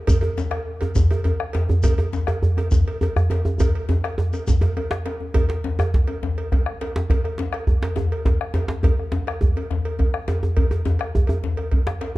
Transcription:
0.07 bombo low loud
0.07 cowbell medium
0.07 djembe bass medium
0.07 shekere medium
0.21 cowbell medium
0.21 djembe tone medium
0.38 bombo rim soft
0.38 djembe slap medium
0.38 djembe tone medium
0.38 shekere soft
0.51 bombo rim medium
0.51 cowbell medium
0.81 bombo rim soft
0.81 cowbell medium
0.81 djembe slap soft
0.81 djembe tone medium
0.95 bombo low loud
0.95 djembe slap medium
0.95 djembe bass medium
0.95 shekere medium
1.11 cowbell medium
1.11 djembe slap soft
1.11 djembe tone medium
1.24 cowbell medium
1.24 djembe slap soft
1.24 djembe tone medium
1.40 bombo rim medium
1.53 cowbell medium
1.53 djembe slap medium
1.53 djembe tone medium
1.69 djembe tone medium
1.69 djembe bass medium
1.83 bombo low loud
1.83 cowbell medium
1.83 djembe tone medium
1.83 djembe bass medium
1.83 shekere medium
1.98 cowbell medium
1.98 djembe tone medium
2.13 bombo rim soft
2.13 djembe slap medium
2.13 djembe tone medium
2.13 shekere soft
2.27 bombo rim medium
2.27 cowbell medium
2.27 djembe tone medium
2.43 djembe bass medium
2.57 bombo rim soft
2.57 cowbell medium
2.57 djembe slap soft
2.57 djembe tone medium
2.71 bombo low loud
2.71 djembe slap medium
2.71 djembe tone medium
2.71 djembe bass medium
2.71 shekere medium
2.86 cowbell medium
2.86 djembe slap soft
3.01 cowbell medium
3.01 djembe slap soft
3.01 djembe tone medium
3.16 bombo rim medium
3.16 djembe bass medium
3.30 cowbell medium
3.30 djembe slap medium
3.30 djembe tone medium
3.45 djembe tone medium
3.60 bombo low loud
3.60 cowbell medium
3.60 djembe tone loud
3.60 djembe bass medium
3.60 shekere medium
3.75 cowbell medium
3.89 djembe slap medium
3.89 djembe tone medium
3.89 djembe tone loud
4.03 bombo rim medium
4.03 cowbell soft
4.03 djembe slap soft
4.18 bombo rim soft
4.18 djembe tone loud
4.33 cowbell soft
4.33 djembe slap soft
4.33 djembe tone medium
4.33 shekere soft
4.47 bombo low loud
4.47 djembe slap medium
4.47 djembe tone loud
4.47 djembe bass medium
4.47 shekere medium
4.61 bombo rim soft
4.61 cowbell medium
4.61 djembe slap soft
4.61 djembe tone loud
4.77 bombo rim soft
4.77 cowbell medium
4.77 djembe slap soft
4.77 djembe tone medium
4.91 bombo rim medium
4.91 djembe slap loud
4.91 djembe slap soft
5.06 bombo rim soft
5.06 cowbell medium
5.06 djembe slap medium
5.20 djembe tone medium
5.34 bombo rim soft
5.34 bombo low loud
5.34 cowbell medium
5.34 djembe tone loud
5.34 djembe bass medium
5.49 cowbell medium
5.49 djembe slap medium
5.64 djembe slap medium
5.64 djembe tone medium
5.79 bombo rim medium
5.79 cowbell medium
5.79 djembe tone loud
5.94 bombo low loud
5.94 djembe slap medium
6.08 cowbell medium
6.08 djembe tone medium
6.23 bombo rim soft
6.23 djembe slap medium
6.23 djembe bass medium
6.37 cowbell soft
6.37 djembe slap soft
6.52 bombo rim soft
6.52 bombo low loud
6.52 cowbell medium
6.52 djembe slap soft
6.52 djembe tone medium
6.66 bombo rim medium
6.81 cowbell medium
6.81 djembe slap medium
6.96 djembe slap loud
6.96 djembe tone medium
7.10 bombo rim soft
7.10 bombo low loud
7.10 cowbell medium
7.10 djembe tone medium
7.10 djembe bass medium
7.24 bombo rim soft
7.24 cowbell medium
7.38 djembe slap medium
7.38 djembe tone medium
7.53 bombo rim medium
7.53 cowbell medium
7.67 bombo low loud
7.67 djembe tone medium
7.82 cowbell medium
7.82 djembe slap loud
7.82 djembe tone medium
7.96 bombo rim soft
7.96 djembe slap medium
7.96 djembe tone medium
7.96 djembe bass medium
8.11 cowbell medium
8.11 djembe slap soft
8.25 bombo rim soft
8.25 bombo low medium
8.25 cowbell soft
8.25 djembe slap soft
8.25 djembe slap medium
8.25 djembe tone medium
8.41 bombo rim medium
8.54 cowbell medium
8.54 djembe slap medium
8.54 djembe tone medium
8.68 djembe slap loud
8.68 djembe tone medium
8.83 bombo rim soft
8.83 bombo low loud
8.83 cowbell medium
8.83 djembe tone medium
8.83 djembe bass medium
8.99 bombo rim soft
9.12 djembe slap medium
9.12 djembe tone medium
9.27 bombo rim medium
9.27 cowbell soft
9.41 bombo low loud
9.41 djembe tone medium
9.56 cowbell soft
9.56 djembe tone medium
9.70 bombo rim soft
9.70 djembe slap medium
9.70 djembe bass medium
9.85 cowbell soft
9.85 djembe slap soft
9.99 bombo rim soft
9.99 bombo low medium
9.99 cowbell soft
9.99 djembe slap soft
9.99 djembe tone medium
10.14 bombo rim medium
10.28 cowbell soft
10.28 djembe slap medium
10.28 djembe tone medium
10.43 djembe tone medium
10.57 bombo low medium
10.57 cowbell medium
10.57 djembe bass medium
10.71 cowbell soft
10.71 djembe slap soft
10.71 djembe tone medium
10.85 djembe slap medium
10.85 djembe tone medium
10.99 bombo rim medium
10.99 cowbell soft
11.15 bombo low loud
11.15 djembe tone medium
11.27 cowbell soft
11.27 djembe slap soft
11.27 djembe tone medium
11.44 djembe slap medium
11.44 djembe bass medium
11.57 bombo rim soft
11.57 cowbell soft
11.57 djembe slap soft
11.71 bombo low loud
11.71 cowbell soft
11.71 djembe tone medium
11.87 bombo rim medium
11.87 djembe slap loud
12.01 bombo rim soft
12.01 cowbell medium
12.01 djembe slap medium

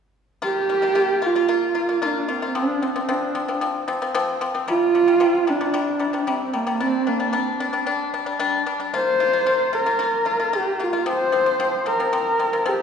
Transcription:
0.42 0.64 A#3 medium
0.42 0.64 F4 medium
0.42 1.28 G4 loud
0.69 0.80 A#3 medium
0.69 0.80 F4 medium
0.82 0.93 A#3 medium
0.82 0.93 F4 medium
0.95 1.17 A#3 medium
0.95 1.17 F4 medium
1.22 1.33 A#3 medium
1.22 1.33 F4 medium
1.26 2.07 F4 medium
1.35 1.46 A#3 medium
1.35 1.46 F4 medium
1.48 1.70 A#3 medium
1.48 1.70 F4 medium
1.75 1.86 A#3 medium
1.75 1.86 F4 medium
1.89 2.00 A#3 medium
1.89 2.00 F4 medium
2.02 2.23 A#3 medium
2.02 2.29 D4 medium
2.02 2.24 F4 loud
2.28 2.39 A#3 medium
2.28 2.58 C4 medium
2.28 2.39 F4 medium
2.42 2.53 A#3 medium
2.42 2.53 F4 medium
2.55 2.77 F3 medium
2.55 2.77 C4 medium
2.55 2.84 D4 medium
2.82 2.93 F3 medium
2.82 3.12 C4 medium
2.82 2.93 C4 medium
2.96 3.06 F3 medium
2.96 3.06 C4 medium
3.09 3.30 F3 medium
3.09 3.30 C4 loud
3.09 3.63 D4 medium
3.35 3.46 F3 medium
3.35 3.46 C4 medium
3.48 3.59 F3 medium
3.48 3.59 C4 medium
3.61 3.83 F3 medium
3.61 3.83 C4 medium
3.88 3.99 F3 medium
3.88 3.99 C4 medium
4.02 4.12 F3 medium
4.02 4.12 C4 medium
4.15 4.36 F3 loud
4.15 4.36 C4 loud
4.41 4.52 F3 medium
4.41 4.52 C4 medium
4.54 4.65 F3 medium
4.54 4.66 C4 medium
4.68 4.89 C3 medium
4.68 4.90 G3 medium
4.68 5.50 F4 loud
4.95 5.06 C3 medium
4.95 5.05 G3 medium
5.08 5.19 C3 medium
5.08 5.19 G3 medium
5.20 5.42 C3 medium
5.20 5.42 G3 loud
5.47 5.58 C3 medium
5.47 5.58 G3 medium
5.47 6.22 D4 medium
5.61 5.72 C3 medium
5.61 5.72 G3 medium
5.74 5.95 C3 medium
5.74 5.95 G3 medium
5.99 6.11 C3 medium
5.99 6.11 G3 medium
6.13 6.25 C3 medium
6.13 6.25 G3 medium
6.22 6.30 D4 medium
6.27 6.49 C3 medium
6.27 6.49 G3 medium
6.27 6.56 C4 medium
6.53 6.65 C3 medium
6.53 6.65 G3 medium
6.53 6.82 A#3 medium
6.67 6.78 C3 medium
6.67 6.78 G3 medium
6.80 7.02 G3 medium
6.80 7.10 C4 medium
6.80 7.02 D4 medium
7.07 7.18 G3 medium
7.07 7.38 A#3 medium
7.07 7.18 D4 medium
7.20 7.31 G3 medium
7.20 7.31 D4 medium
7.33 7.55 G3 medium
7.33 7.89 C4 medium
7.33 7.55 D4 loud
7.60 7.71 G3 medium
7.60 7.71 D4 medium
7.73 7.84 G3 medium
7.73 7.84 D4 medium
7.86 8.08 G3 medium
7.86 8.08 D4 medium
8.14 8.24 G3 medium
8.14 8.24 D4 medium
8.26 8.37 G3 medium
8.26 8.37 D4 medium
8.39 8.61 G3 medium
8.39 8.61 D4 loud
8.66 8.77 G3 medium
8.66 8.77 D4 medium
8.80 8.91 G3 medium
8.80 8.91 D4 medium
8.94 9.15 A#3 medium
8.94 9.15 F4 medium
8.94 9.75 C5 loud
9.20 9.31 A#3 medium
9.20 9.31 F4 medium
9.33 9.44 A#3 medium
9.33 9.44 F4 medium
9.46 9.68 A#3 medium
9.46 9.68 F4 medium
9.73 9.84 A#3 medium
9.73 9.84 F4 medium
9.73 10.57 A#4 medium
9.86 9.97 A#3 medium
9.86 9.97 F4 medium
9.99 10.21 A#3 medium
9.99 10.21 F4 medium
10.25 10.37 A#3 medium
10.25 10.37 F4 medium
10.39 10.50 A#3 medium
10.39 10.50 F4 medium
10.53 10.74 A#3 medium
10.53 10.74 F4 medium
10.53 10.84 G4 medium
10.80 10.90 A#3 medium
10.80 10.90 F4 medium
10.80 11.07 F4 medium
10.93 11.04 A#3 medium
10.93 11.04 F4 medium
11.06 11.27 F3 medium
11.06 11.27 C4 medium
11.06 11.89 C5 loud
11.32 11.43 F3 medium
11.32 11.43 C4 medium
11.46 11.57 F3 medium
11.46 11.57 C4 medium
11.60 11.81 F3 medium
11.60 11.81 C4 medium
11.86 11.97 F3 medium
11.86 11.97 C4 medium
11.86 12.70 A#4 medium
12.00 12.10 F3 medium
12.00 12.10 C4 medium
12.13 12.34 F3 medium
12.13 12.34 C4 medium
12.39 12.50 F3 medium
12.39 12.50 C4 medium
12.53 12.63 F3 medium
12.53 12.63 C4 medium
12.66 12.82 F3 medium
12.66 12.82 C4 medium
12.66 12.82 G4 medium

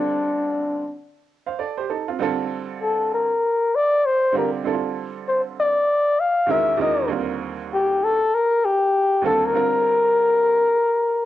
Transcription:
0.00 0.80 D3 medium
0.00 0.80 G3 medium
0.00 0.81 C4 medium
0.00 0.99 D4 medium
0.00 0.81 F4 medium
0.00 0.82 A4 medium
1.46 1.58 C5 medium
1.46 1.58 F5 medium
1.59 1.77 A4 soft
1.59 1.76 D5 medium
1.77 1.89 G4 medium
1.77 1.89 C5 medium
1.90 2.08 D#4 soft
1.90 2.07 A4 medium
2.08 2.19 C4 soft
2.08 2.20 F4 medium
2.19 3.25 D3 medium
2.19 3.26 G3 medium
2.19 3.26 C4 medium
2.19 3.27 F4 medium
2.19 3.27 A4 medium
2.83 3.10 A4 medium
3.14 3.77 A#4 medium
3.75 4.08 D5 loud
4.06 4.36 C5 loud
4.32 4.60 D3 medium
4.32 4.61 G3 medium
4.32 4.61 C4 medium
4.32 4.62 F4 medium
4.32 4.62 G4 medium
4.38 4.51 A#4 medium
4.63 5.70 D3 medium
4.63 5.70 G3 medium
4.63 5.71 C4 medium
4.63 4.74 E4 soft
4.63 5.72 A4 medium
4.73 5.75 F4 medium
5.29 5.42 C5 medium
5.60 6.22 D5 medium
6.20 6.53 F5 loud
6.46 6.74 E2 medium
6.46 6.75 D#3 medium
6.46 6.75 G#3 medium
6.46 6.76 C#4 medium
6.46 6.76 F#4 medium
6.46 6.76 A#4 medium
6.51 6.81 E5 loud
6.77 7.05 E2 medium
6.77 7.06 D#3 medium
6.77 7.06 G#3 medium
6.77 7.06 C#4 medium
6.77 7.07 F#4 medium
6.77 7.07 A#4 medium
6.82 7.09 D#5 medium
7.08 8.15 D#2 medium
7.08 8.15 D3 medium
7.08 8.15 G3 medium
7.08 8.16 C4 medium
7.08 8.16 F4 medium
7.12 8.17 A#4 medium
7.74 8.06 G4 loud
8.04 8.36 A4 loud
8.34 8.66 A#4 loud
8.65 9.25 G4 loud
9.22 9.50 D#2 medium
9.22 9.50 D3 medium
9.22 9.51 G3 medium
9.22 9.51 C4 medium
9.22 9.51 F4 medium
9.22 9.52 A4 medium
9.26 9.47 A4 medium
9.46 11.25 A#4 loud
9.53 10.59 D3 medium
9.53 10.60 G3 medium
9.53 10.61 C4 medium
9.53 10.61 F4 medium
9.53 10.61 A#4 medium

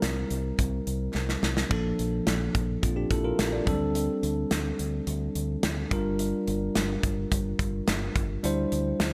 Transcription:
0.00 0.23 C2 medium
0.00 1.66 G3 medium
0.00 1.67 C4 medium
0.00 1.67 E4 medium
0.00 1.67 A#4 medium
0.00 snare loud
0.00 closed hi-hat medium
0.30 0.51 C2 medium
0.30 closed hi-hat medium
0.59 0.79 C2 loud
0.59 kick medium
0.59 closed hi-hat medium
0.87 1.07 C2 medium
0.87 closed hi-hat medium
1.15 1.35 C2 loud
1.15 snare medium
1.29 snare medium
1.43 1.63 C2 medium
1.43 snare medium
1.57 snare medium
1.69 1.91 A#1 medium
1.69 3.62 F3 medium
1.69 3.63 A#3 medium
1.69 2.81 D4 medium
1.69 2.81 A4 medium
1.69 kick loud
1.69 splash medium
1.99 2.19 A#1 medium
1.99 closed hi-hat medium
2.27 2.47 A#1 loud
2.27 snare loud
2.27 closed hi-hat medium
2.55 2.75 A#1 medium
2.55 kick medium
2.55 closed hi-hat medium
2.83 3.03 A#1 medium
2.83 2.96 C4 soft
2.83 2.96 F4 medium
2.83 kick medium
2.83 closed hi-hat medium
2.96 3.10 D4 medium
2.96 3.10 G4 medium
3.11 3.31 A#1 medium
3.11 3.24 E4 medium
3.11 3.24 A4 medium
3.11 kick medium
3.11 closed hi-hat medium
3.24 3.52 F4 medium
3.24 3.51 A#4 medium
3.39 3.59 A#1 loud
3.39 snare loud
3.39 closed hi-hat medium
3.53 3.67 A4 soft
3.53 3.79 D5 medium
3.65 4.07 D2 medium
3.65 3.73 F#3 medium
3.65 5.87 C4 medium
3.65 5.87 D4 medium
3.65 5.88 A4 medium
3.65 kick loud
3.65 closed hi-hat medium
3.72 5.89 G3 medium
3.95 closed hi-hat medium
4.23 4.43 D2 medium
4.23 closed hi-hat medium
4.51 4.71 D2 loud
4.51 snare loud
4.51 closed hi-hat medium
4.79 4.99 D2 medium
4.79 closed hi-hat medium
5.07 5.27 D2 loud
5.07 closed hi-hat medium
5.35 5.55 D2 medium
5.35 closed hi-hat medium
5.63 5.84 D2 loud
5.63 snare loud
5.63 closed hi-hat loud
5.90 6.32 G1 medium
5.90 8.11 G3 medium
5.90 8.12 D4 medium
5.90 8.12 F4 medium
5.90 8.12 A#4 medium
5.90 kick loud
5.90 closed hi-hat medium
6.19 closed hi-hat medium
6.47 6.68 G1 loud
6.47 closed hi-hat medium
6.75 6.96 G1 loud
6.75 snare loud
6.75 closed hi-hat medium
7.03 7.24 G1 loud
7.03 kick medium
7.03 closed hi-hat medium
7.32 7.52 G1 loud
7.32 kick medium
7.32 closed hi-hat medium
7.59 7.80 G1 medium
7.59 kick medium
7.59 closed hi-hat medium
7.88 8.08 G1 loud
7.88 snare loud
7.88 closed hi-hat medium
8.16 8.36 G1 loud
8.16 kick medium
8.16 closed hi-hat medium
8.43 8.64 D2 loud
8.43 9.13 G3 medium
8.43 9.13 D4 medium
8.43 9.13 E4 medium
8.43 9.13 C5 medium
8.43 closed hi-hat medium
8.72 8.92 D2 medium
8.72 closed hi-hat medium
9.00 9.13 D2 loud
9.00 snare loud
9.00 closed hi-hat medium

